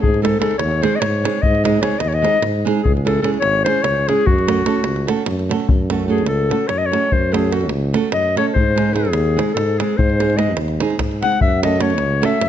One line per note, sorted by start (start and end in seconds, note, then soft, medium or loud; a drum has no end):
0.00 0.37 G#2 medium
0.00 0.21 G#4 medium
0.00 davul low medium
0.14 davul high soft
0.22 0.36 G#3 medium
0.22 0.37 C4 medium
0.22 0.37 D#4 medium
0.22 0.37 G#4 medium
0.22 0.39 A4 medium
0.22 davul high medium
0.39 0.54 G#3 medium
0.39 0.54 C4 medium
0.39 0.55 D#4 medium
0.39 0.55 G#4 medium
0.39 0.57 A4 medium
0.39 davul high medium
0.51 davul high soft
0.58 0.84 D#2 loud
0.58 0.84 C#5 medium
0.58 davul high medium
0.71 davul high soft
0.82 0.97 G#3 medium
0.82 0.97 C4 medium
0.82 0.97 D#4 medium
0.82 0.98 G#4 medium
0.82 0.97 C5 medium
0.82 davul high medium
0.96 1.02 D#5 medium
1.00 1.27 G#2 medium
1.00 1.43 C#5 medium
1.00 davul high medium
1.24 1.39 G#3 medium
1.24 1.39 C4 medium
1.24 1.39 D#4 medium
1.24 1.40 G#4 medium
1.24 davul high medium
1.42 1.78 G#2 loud
1.42 1.64 D#5 medium
1.42 davul low medium
1.55 davul high soft
1.64 1.78 G#3 medium
1.64 1.78 C4 medium
1.64 1.79 D#4 soft
1.64 1.79 G#4 medium
1.64 1.84 D#5 medium
1.64 davul high medium
1.81 1.95 G#3 medium
1.81 1.96 C4 medium
1.81 1.96 D#4 medium
1.81 1.96 G#4 medium
1.81 2.01 C#5 medium
1.81 davul high medium
1.92 davul high soft
1.99 2.25 D#2 medium
1.99 2.09 D#5 medium
1.99 davul high medium
2.08 2.16 C#5 medium
2.13 2.41 D#5 loud
2.13 davul high soft
2.22 2.37 G#3 medium
2.22 2.38 C4 medium
2.22 2.38 D#4 medium
2.22 2.38 G#4 medium
2.22 davul high medium
2.42 2.68 G#2 medium
2.42 davul high medium
2.65 2.80 G#3 medium
2.65 2.80 C4 medium
2.65 2.81 D#4 medium
2.65 2.81 G#4 medium
2.65 davul high medium
2.83 3.19 C#2 medium
2.83 2.93 G#4 medium
2.83 davul low medium
2.97 davul high soft
3.05 3.19 G#3 medium
3.05 3.20 C#4 medium
3.05 3.20 E4 medium
3.05 3.20 G#4 medium
3.05 3.22 A4 medium
3.05 davul high medium
3.22 3.37 G#3 medium
3.22 3.37 C#4 medium
3.22 3.37 E4 medium
3.22 3.38 G#4 medium
3.22 3.31 A4 medium
3.22 davul high medium
3.34 davul high soft
3.40 3.67 G#1 medium
3.40 3.63 C#5 loud
3.40 davul high medium
3.64 3.80 G#3 medium
3.64 3.80 C#4 medium
3.64 3.81 E4 medium
3.64 3.81 G#4 medium
3.64 3.84 C5 loud
3.64 davul high medium
3.82 4.10 C#2 medium
3.82 4.09 C#5 medium
3.82 davul high medium
4.08 4.23 G#3 medium
4.08 4.23 C#4 medium
4.08 4.23 E4 medium
4.08 4.28 G#4 medium
4.08 4.23 G#4 medium
4.08 davul high medium
4.26 4.61 F#2 medium
4.26 5.26 F#4 medium
4.26 davul low medium
4.39 davul high soft
4.47 4.62 A3 medium
4.47 4.62 C#4 medium
4.47 4.62 F#4 medium
4.47 4.63 A4 medium
4.47 davul high medium
4.66 4.80 A3 medium
4.66 4.80 C#4 medium
4.66 4.80 F#4 soft
4.66 4.81 A4 medium
4.66 davul high medium
4.83 5.09 C#2 medium
4.83 davul high medium
4.96 davul high soft
5.07 5.22 A3 medium
5.07 5.22 C#4 medium
5.07 5.23 F#4 medium
5.07 5.23 A4 medium
5.07 davul high medium
5.26 5.53 F#2 medium
5.26 davul high medium
5.39 davul high soft
5.49 5.64 A3 medium
5.49 5.65 C#4 medium
5.49 5.65 F#4 medium
5.49 5.66 A4 medium
5.49 davul high medium
5.60 davul high soft
5.69 6.27 F#2 medium
5.69 davul low medium
5.90 6.05 A3 medium
5.90 6.05 C#4 medium
5.90 6.05 F#4 medium
5.90 6.05 A4 medium
5.90 davul high medium
6.08 6.22 A3 medium
6.08 6.22 C#4 medium
6.08 6.22 F#4 soft
6.08 6.25 G#4 medium
6.08 6.23 A4 medium
6.18 davul high soft
6.26 6.52 C#2 medium
6.26 6.69 A4 medium
6.26 davul high medium
6.49 6.64 A3 medium
6.49 6.65 C#4 medium
6.49 6.65 F#4 medium
6.49 6.65 A4 medium
6.49 davul high medium
6.68 6.95 F#2 medium
6.68 6.79 C#5 medium
6.68 davul high medium
6.78 6.87 D#5 medium
6.86 7.14 C#5 medium
6.92 7.07 A3 medium
6.92 7.07 C#4 soft
6.92 7.08 F#4 soft
6.92 7.08 A4 medium
6.92 davul high medium
7.12 7.71 F#2 medium
7.12 7.35 C5 medium
7.12 davul low medium
7.32 7.47 A3 medium
7.32 7.47 C#4 medium
7.32 7.47 F#4 medium
7.32 7.54 G#4 medium
7.32 7.48 A4 medium
7.32 davul high medium
7.51 7.65 A3 medium
7.51 7.66 C#4 medium
7.51 7.66 F#4 medium
7.51 7.70 F#4 medium
7.51 7.66 A4 medium
7.51 davul high medium
7.61 davul high soft
7.69 7.95 C#2 loud
7.69 davul high medium
7.93 8.08 A3 medium
7.93 8.08 C#4 medium
7.93 8.09 F#4 medium
7.93 8.09 A4 medium
7.93 davul high medium
8.12 8.38 F#2 medium
8.12 8.36 D#5 medium
8.12 davul high medium
8.36 8.51 A3 medium
8.36 8.51 C#4 medium
8.36 8.51 F#4 soft
8.36 8.52 A4 medium
8.36 8.46 C#5 medium
8.36 davul high medium
8.53 9.14 G#2 medium
8.53 8.95 C5 medium
8.53 davul low medium
8.76 8.90 G#3 medium
8.76 8.91 C4 soft
8.76 8.91 D#4 medium
8.76 8.91 G#4 medium
8.76 davul high medium
8.93 9.08 G#3 medium
8.93 9.08 C4 medium
8.93 9.09 D#4 medium
8.93 9.53 G#4 medium
8.93 9.09 G#4 medium
8.93 davul high medium
9.05 davul high soft
9.12 9.38 D#2 loud
9.12 davul high medium
9.36 9.51 G#3 medium
9.36 9.51 C4 medium
9.36 9.52 D#4 medium
9.36 9.52 G#4 medium
9.36 davul high medium
9.54 9.81 G#2 medium
9.54 9.79 A4 medium
9.54 davul high medium
9.78 9.94 G#3 medium
9.78 9.94 C4 medium
9.78 9.94 D#4 medium
9.78 9.98 G#4 medium
9.78 9.95 G#4 medium
9.78 davul high medium
9.97 10.57 G#2 loud
9.97 10.38 C5 medium
9.97 davul low medium
10.10 davul high soft
10.20 10.34 G#3 medium
10.20 10.34 C4 soft
10.20 10.34 D#4 medium
10.20 10.34 G#4 medium
10.20 davul high medium
10.30 davul high soft
10.37 10.51 G#3 medium
10.37 10.52 C4 medium
10.37 10.52 D#4 soft
10.37 10.52 G#4 medium
10.37 10.55 D#5 medium
10.37 davul high medium
10.56 10.81 D#2 medium
10.56 davul high medium
10.68 davul high soft
10.80 10.94 G#3 medium
10.80 10.95 C4 medium
10.80 10.95 D#4 medium
10.80 10.95 G#4 medium
10.80 davul high medium
10.90 davul high soft
10.98 11.24 G#2 medium
10.98 davul high medium
10.98 davul low medium
11.11 davul high soft
11.23 11.37 G#3 medium
11.23 11.37 C4 soft
11.23 11.38 D#4 medium
11.23 11.38 G#4 medium
11.23 11.40 F#5 medium
11.23 davul high medium
11.32 davul high soft
11.41 12.00 F#2 medium
11.41 11.62 E5 medium
11.41 davul low medium
11.63 11.77 A3 medium
11.63 11.77 C#4 medium
11.63 11.77 F#4 medium
11.63 11.78 A4 medium
11.63 11.83 D#5 medium
11.63 davul high medium
11.80 11.94 A3 medium
11.80 11.94 C#4 medium
11.80 11.95 F#4 medium
11.80 11.95 A4 medium
11.80 12.27 C#5 medium
11.80 davul high medium
11.90 davul high soft
11.98 12.25 C#2 medium
11.98 davul high medium
12.22 12.37 A3 medium
12.22 12.37 C#4 soft
12.22 12.37 F#4 medium
12.22 12.38 A4 medium
12.22 12.49 E5 medium
12.22 davul high medium
12.41 12.49 F#2 medium
12.41 davul high medium